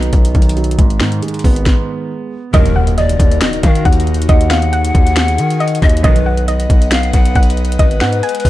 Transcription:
Already playing: 808-style bass B1, grand piano B2 D#3 F#3 B3 D#4
0.03 closed hi-hat
0.13 808-style bass B1, grand piano B2, kick, closed hi-hat
0.25 closed hi-hat
0.35 808-style bass B1, grand piano D#3, kick, closed hi-hat
0.42 closed hi-hat
0.49 closed hi-hat
0.57 grand piano F#3, closed hi-hat
0.64 closed hi-hat
0.71 closed hi-hat
0.79 808-style bass G#1, grand piano G#2, kick, closed hi-hat
0.90 closed hi-hat
1.00 808-style bass G#2, grand piano D#3, finger snap, snare
1.12 closed hi-hat
1.22 grand piano G#3, closed hi-hat
1.28 closed hi-hat
1.34 closed hi-hat
1.39 closed hi-hat
1.44 808-style bass G#1, grand piano B3, kick, open hi-hat
1.56 closed hi-hat
1.66 kick, snare
2.54 string section A#1 F#2 D#3, 808-style bass D#2, analog synth pad D#3 D#4 F#4 A#4, pan flute A#4, synth pluck D#5, kick, closed hi-hat, impact
2.66 closed hi-hat
2.76 synth pluck F#5
2.87 closed hi-hat
2.98 pan flute D5, synth pluck D#5, closed hi-hat
3.09 closed hi-hat
3.20 808-style bass D#2, kick, closed hi-hat
3.31 closed hi-hat
3.41 pan flute D#5, finger snap, snare, closed hi-hat
3.53 closed hi-hat
3.63 808-style bass D#3, pan flute F5, kick, closed hi-hat
3.75 closed hi-hat
3.85 808-style bass D#2, synth pluck F#5, kick, closed hi-hat
3.93 closed hi-hat
4.00 closed hi-hat
4.07 closed hi-hat
4.14 closed hi-hat
4.22 closed hi-hat
4.29 808-style bass D#2, analog synth pad G#4, synth pluck D#5, pan flute F#5, kick, closed hi-hat
4.41 closed hi-hat
4.50 synth pluck F5, finger snap, snare
4.62 closed hi-hat
4.73 synth pluck F#5, closed hi-hat
4.85 closed hi-hat
4.95 808-style bass D#2, kick, closed hi-hat
5.07 closed hi-hat
5.16 finger snap, snare, closed hi-hat
5.28 closed hi-hat
5.38 808-style bass D#3, closed hi-hat
5.50 closed hi-hat
5.60 synth pluck D#5, closed hi-hat
5.68 closed hi-hat
5.75 closed hi-hat
5.82 808-style bass D#2, pan flute D#5, kick, closed hi-hat
5.89 closed hi-hat
5.97 closed hi-hat
6.04 string section B1 F#2 D#3, 808-style bass B1, analog synth pad B3 B4 D#5 F#5, pan flute B4, synth pluck D#5, kick, closed hi-hat
6.16 closed hi-hat
6.26 synth pluck F#5
6.37 closed hi-hat
6.48 synth pluck D#5, pan flute D#5, closed hi-hat
6.60 closed hi-hat
6.70 808-style bass B1, kick, closed hi-hat
6.82 closed hi-hat
6.91 pan flute F5, finger snap, snare, closed hi-hat
7.03 closed hi-hat
7.13 808-style bass B1, pan flute F#5, kick, closed hi-hat
7.25 closed hi-hat
7.35 808-style bass B1, synth pluck F#5, kick, closed hi-hat
7.43 closed hi-hat
7.50 closed hi-hat
7.57 closed hi-hat
7.65 closed hi-hat
7.72 closed hi-hat
7.79 808-style bass G#1, analog synth pad G#3 G#4, pan flute B4, synth pluck D#5, kick, closed hi-hat
7.91 closed hi-hat
8.00 808-style bass G#2, synth pluck F#5, finger snap, snare
8.13 closed hi-hat
8.23 synth pluck G#5, closed hi-hat
8.29 closed hi-hat
8.35 closed hi-hat
8.40 closed hi-hat
8.45 808-style bass G#1, kick, open hi-hat

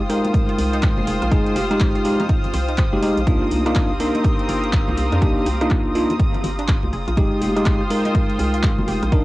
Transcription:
Already playing: fm bass F1, string section F4 C5, analog synth pad F5 G5 C6 D#6, violin section D#6
0.09 tine electric piano G#3 D#4 A#4, synth arpeggio sound G4, open hi-hat
0.25 closed hi-hat, high conga
0.34 kick, closed hi-hat
0.49 synth arpeggio sound F4, closed hi-hat
0.58 fm bass C2, open hi-hat
0.73 synth arpeggio sound D#4, closed hi-hat
0.83 kick, clap, closed hi-hat
0.97 fm bass F1, high conga, low conga
1.07 fm bass F1, synth arpeggio sound G#4, analog synth pad F6, open hi-hat
1.22 fm bass A#1, synth arpeggio sound F4, cross-stick, closed hi-hat
1.32 fm bass F1, tine electric piano G#3 D#4 G#4, synth arpeggio sound G#4, kick, closed hi-hat
1.47 closed hi-hat
1.56 fm bass F1, synth arpeggio sound G4, open hi-hat, high conga
1.71 tine electric piano G#3 D#4 G4, cross-stick, closed hi-hat
1.80 kick, clap, closed hi-hat
1.95 synth arpeggio sound F4, closed hi-hat
2.05 tine electric piano G#3 D#4 G4, open hi-hat
2.20 synth arpeggio sound D#4, closed hi-hat, high conga, low conga
2.29 synth arpeggio sound D#4, kick, closed hi-hat
2.44 closed hi-hat, low conga
2.54 fm bass C2, synth arpeggio sound C5, open hi-hat, low conga
2.68 synth arpeggio sound D#4, closed hi-hat
2.78 synth arpeggio sound C5, kick, clap, closed hi-hat
2.93 fm bass F1, tine electric piano G#3 D#4 G4, high conga
3.02 tine electric piano G#3 D#4 G4, synth arpeggio sound C5, open hi-hat
3.17 fm bass A#1, closed hi-hat
3.27 fm bass C2, tine electric piano A#3 D4 D#4 F4, string section C4, analog synth pad F5 A#5 C6 D#6, kick, closed hi-hat
3.34 string section G4
3.42 synth arpeggio sound F4
3.51 fm bass C2, open hi-hat, high conga
3.66 tine electric piano A#3 D4 D#4 F4, synth arpeggio sound D4, cross-stick, closed hi-hat
3.75 synth arpeggio sound D4, kick, clap, closed hi-hat
4.00 tine electric piano A#3 D4 D#4 A#4, synth arpeggio sound G4, open hi-hat
4.15 synth arpeggio sound D#4, closed hi-hat, high conga
4.24 synth arpeggio sound G4, kick, closed hi-hat
4.39 closed hi-hat
4.49 fm bass G1, synth arpeggio sound F4, open hi-hat
4.64 closed hi-hat
4.73 kick, clap, closed hi-hat
4.88 fm bass C2, synth arpeggio sound F4, high conga, low conga
4.98 fm bass C2, open hi-hat
5.12 fm bass F2, synth arpeggio sound D4, cross-stick, closed hi-hat
5.22 fm bass C2, tine electric piano A#3 D4 D#4 G4, synth arpeggio sound D4, kick, closed hi-hat
5.46 fm bass C2, synth arpeggio sound G4, open hi-hat, high conga
5.61 tine electric piano A#3 D4 D#4 F4, synth arpeggio sound D#4, cross-stick, closed hi-hat
5.71 synth arpeggio sound G4, kick, clap, closed hi-hat
5.95 tine electric piano A#3 D4 D#4 F4, synth arpeggio sound F4, open hi-hat
6.10 closed hi-hat, high conga, low conga
6.20 kick, closed hi-hat
6.34 synth arpeggio sound F4, closed hi-hat, low conga
6.43 fm bass G1, open hi-hat, low conga
6.59 synth arpeggio sound D4, closed hi-hat
6.68 synth arpeggio sound D4, kick, clap, closed hi-hat
6.83 fm bass C2, high conga
6.93 fm bass F1, string section F4, synth arpeggio sound G#4, analog synth pad F5 G5 C6 D#6, open hi-hat
7.08 fm bass A#1, synth arpeggio sound F4, closed hi-hat
7.17 fm bass F1, tine electric piano G#3 D#4 G4, synth arpeggio sound G#4, kick, closed hi-hat
7.29 string section C5
7.41 fm bass F1, synth arpeggio sound G4, open hi-hat, high conga
7.56 tine electric piano G#3 D#4 G4, cross-stick, closed hi-hat
7.66 kick, clap, closed hi-hat
7.81 synth arpeggio sound G4
7.90 tine electric piano G#3 D#4 A#4, open hi-hat
8.05 synth arpeggio sound D#4, closed hi-hat, high conga
8.15 synth arpeggio sound D#4, kick, closed hi-hat
8.29 closed hi-hat
8.39 fm bass C2, synth arpeggio sound G#4, open hi-hat
8.54 synth arpeggio sound F4, closed hi-hat
8.63 synth arpeggio sound G#4, kick, clap, closed hi-hat
8.78 fm bass F1, high conga, low conga
8.88 fm bass F1, synth arpeggio sound G4, open hi-hat
9.03 fm bass A#1, cross-stick, closed hi-hat
9.12 fm bass D#1, string section D#3, tine electric piano D4 D#4 A#4, analog synth pad F5 G5 A#5 D#6, kick, closed hi-hat

